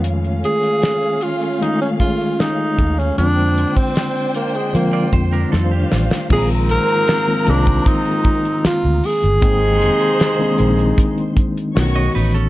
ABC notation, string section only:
X:1
M:4/4
L:1/8
Q:1/4=77
K:Bbmix
V:1 name="String section"
[=A,^Cf]8 | [Dcg]6 [Dcf]2 | [Bb]6- [Bb] z | [cc']4- [cc'] z [^c^c'] z |]